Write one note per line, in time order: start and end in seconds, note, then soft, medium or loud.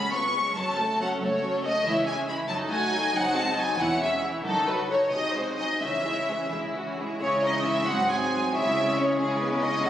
0.00 0.47 C#2 soft
0.00 0.12 G#3 soft
0.00 0.12 C#4 soft
0.00 0.14 G#4 soft
0.00 0.14 C#5 soft
0.00 0.14 B5 medium
0.13 0.35 B3 soft
0.13 0.36 F4 soft
0.13 0.37 B4 soft
0.13 0.57 C#6 medium
0.35 0.57 G#3 soft
0.35 0.56 C#4 soft
0.35 0.58 G#4 soft
0.35 0.58 C#5 soft
0.56 1.11 F#1 medium
0.56 1.11 F#2 medium
0.56 0.77 F#3 soft
0.56 0.78 C#4 soft
0.56 0.78 A4 soft
0.56 0.79 C#5 soft
0.56 1.01 A5 medium
0.78 1.00 A3 soft
0.78 1.01 F#4 soft
0.78 1.00 A4 soft
1.00 1.22 F#3 soft
1.00 1.22 C#4 soft
1.00 1.22 A4 soft
1.00 1.22 C#5 soft
1.00 1.10 F#5 medium
1.21 1.75 F#1 medium
1.21 1.75 F#2 medium
1.21 1.43 A3 soft
1.21 1.44 F#4 soft
1.21 1.44 A4 soft
1.21 1.64 C#5 medium
1.43 1.63 F#3 soft
1.43 1.63 C#4 soft
1.43 1.65 A4 soft
1.43 1.64 C#5 soft
1.63 1.85 A3 soft
1.63 1.86 F#4 soft
1.63 1.86 A4 soft
1.63 1.86 D#5 medium
1.85 2.39 C#2 medium
1.85 2.05 E3 soft
1.85 2.05 E4 soft
1.85 2.05 C#5 soft
1.85 2.08 E5 medium
2.06 2.28 G#3 soft
2.06 2.27 C#4 soft
2.06 2.28 G#4 soft
2.06 2.28 E5 soft
2.06 2.16 G#5 medium
2.29 2.50 E3 soft
2.29 2.50 E4 soft
2.29 2.50 C#5 soft
2.29 2.37 B5 medium
2.49 3.04 F#1 medium
2.49 3.03 F#2 medium
2.49 2.69 F#3 soft
2.49 2.69 D#4 soft
2.49 2.70 A4 soft
2.49 2.70 D#5 soft
2.49 2.57 A5 medium
2.70 2.92 A3 soft
2.70 2.92 F#4 soft
2.70 2.93 F#4 soft
2.70 2.92 F#5 soft
2.70 3.13 G#5 medium
2.91 3.12 F#3 soft
2.91 3.12 D#4 soft
2.91 3.15 A4 soft
2.91 3.14 D#5 soft
3.13 3.69 F#1 medium
3.13 3.69 F#2 medium
3.13 3.34 F#3 medium
3.13 3.34 D#4 medium
3.13 3.35 F#4 medium
3.13 3.35 C5 medium
3.13 3.36 F#5 medium
3.35 3.57 G#3 soft
3.35 3.57 C4 soft
3.35 3.57 G#4 soft
3.35 3.57 D#5 soft
3.35 3.58 A5 medium
3.56 3.79 F#3 soft
3.56 3.79 D#4 soft
3.56 3.79 F#4 soft
3.56 3.79 C5 soft
3.56 3.80 G#5 medium
3.77 4.34 E1 medium
3.77 4.34 E2 medium
3.77 3.98 E3 soft
3.77 3.99 E4 soft
3.77 4.00 E4 medium
3.77 3.99 C#5 medium
3.77 4.02 F#5 medium
4.00 4.22 G#3 soft
4.00 4.23 C#4 soft
4.00 4.23 G#4 soft
4.00 4.23 E5 medium
4.00 4.24 E5 soft
4.22 4.45 E3 soft
4.22 4.45 E4 soft
4.22 4.45 C#5 soft
4.44 5.02 F#1 medium
4.44 5.02 F#2 medium
4.44 4.65 D#3 soft
4.44 4.65 D#4 medium
4.44 4.66 F#4 soft
4.44 4.66 A4 medium
4.67 4.90 F#3 soft
4.67 4.89 F#4 soft
4.67 4.90 F#4 soft
4.67 4.89 A4 soft
4.67 4.91 B4 medium
4.90 5.13 D#3 soft
4.90 5.11 D#4 soft
4.90 5.13 F#4 soft
4.90 5.13 A4 soft
4.90 5.13 C#5 medium
5.12 5.72 C2 medium
5.12 5.71 C3 medium
5.12 5.34 F#3 soft
5.12 5.34 D#4 soft
5.12 5.35 G#4 soft
5.12 5.35 D#5 medium
5.35 5.60 G#3 soft
5.35 5.60 C4 soft
5.35 5.59 F#4 soft
5.35 5.59 C5 medium
5.35 5.59 C5 soft
5.58 5.83 F#3 soft
5.58 5.83 D#4 soft
5.58 5.81 G#4 soft
5.58 5.82 D#5 medium
5.82 6.42 C#2 medium
5.82 6.42 C#3 medium
5.82 6.05 E3 soft
5.82 6.05 C#4 soft
5.82 6.05 G#4 soft
5.82 6.51 E5 medium
6.06 6.30 G#3 soft
6.06 6.30 E4 soft
6.06 6.30 C#5 soft
6.29 6.53 E3 soft
6.29 6.53 C#4 soft
6.29 6.53 G#4 soft
6.51 7.12 C#2 soft
6.51 7.12 C#3 soft
6.51 6.76 G#3 soft
6.51 6.74 E4 soft
6.51 6.76 E4 soft
6.75 6.98 E3 soft
6.75 6.98 C#4 soft
6.75 6.99 F#4 soft
6.99 7.24 G#3 soft
6.99 7.24 E4 soft
6.99 7.22 G#4 soft
7.21 7.81 C#2 medium
7.21 7.81 C#3 medium
7.21 7.85 G#3 soft
7.21 7.43 C#4 medium
7.21 7.90 E4 soft
7.21 7.85 E4 soft
7.21 9.86 G#4 soft
7.21 7.43 C#5 medium
7.21 7.90 C#6 soft
7.44 7.89 E3 soft
7.44 7.89 C#4 soft
7.44 7.66 D#4 medium
7.44 7.67 D#5 medium
7.66 7.89 E4 medium
7.66 7.89 E5 medium
7.87 8.46 G#1 medium
7.87 8.46 G#2 medium
7.87 8.09 F#3 soft
7.87 8.55 F#3 soft
7.87 8.09 C4 soft
7.87 8.55 C4 soft
7.87 8.52 F#4 soft
7.87 8.11 F#4 medium
7.87 8.10 F#5 medium
7.87 8.53 C6 soft
8.10 8.53 F#3 soft
8.10 8.53 C4 soft
8.10 8.53 G#4 medium
8.10 8.54 G#5 medium
8.53 9.11 C#2 medium
8.53 9.11 C#3 medium
8.53 9.18 G#3 soft
8.53 9.18 C#4 soft
8.53 9.84 E4 soft
8.53 8.97 E4 medium
8.53 8.97 E5 medium
8.53 9.90 C#6 medium
8.76 9.38 G#3 soft
8.76 9.38 C#4 soft
8.97 9.07 C#4 medium
8.97 9.19 C#5 medium
9.19 9.76 C#2 medium
9.19 9.76 C#3 medium
9.19 9.40 G#3 medium
9.19 9.82 G#3 soft
9.19 9.82 C#4 medium
9.19 9.40 G#4 medium
9.39 9.82 G#3 soft
9.39 9.62 B3 medium
9.39 9.82 C#4 soft
9.39 9.62 B4 medium
9.62 9.84 D#4 medium
9.62 9.84 D#5 medium
9.83 9.90 F#1 medium
9.83 9.90 F#2 medium
9.83 9.90 A3 medium
9.83 9.90 C#4 medium
9.83 9.90 F#4 medium
9.83 9.90 A4 medium
9.83 9.90 F#5 medium